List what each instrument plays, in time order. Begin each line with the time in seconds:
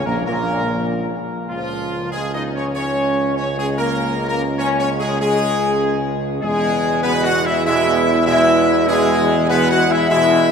0.06 tuba A#1, trombone section A#2, french horn section A#3, trumpet section A#4
0.26 tuba A#1, trombone section A#2, french horn section A#3, trumpet section A#4
1.50 tuba C#2, trombone section C#3 G#3, french horn section F3, trumpet section F4
2.12 french horn section G#3, trumpet section G#4
2.34 french horn section D#4, trumpet section D#5
2.55 french horn section C#4, trumpet section C#5
2.75 french horn section C#4, trumpet section C#5
3.36 french horn section C#4, trumpet section C#5
3.57 french horn section G#3, trumpet section G#4
3.77 french horn section A#3, trumpet section A#4
4.28 french horn section A#3, trumpet section A#4
4.59 french horn section C#4, trumpet section C#5
4.79 french horn section C#4, trumpet section C#5
4.99 french horn section G#3, trumpet section G#4
5.20 french horn section G#3, trumpet section G#4
6.42 tuba E2, trombone section B2 G#3, french horn section G#3, trumpet section G#4
7.03 trombone section B2 G#3, french horn section B3, trumpet section B4
7.23 french horn section F#4, trumpet section F#5
7.45 french horn section E4, trumpet section E5
7.65 trombone section B2 G#3, french horn section E4, trumpet section E5
8.26 trombone section B2 G#3, french horn section E4, trumpet section E5
8.88 trombone section B2 G#3, french horn section G#3, trumpet section G#4
9.49 trombone section B2 G#3, french horn section B3, trumpet section B4
9.71 french horn section F#4, trumpet section F#5
9.90 french horn section E4, trumpet section E5
10.10 trombone section B2 G#3, french horn section E4, trumpet section E5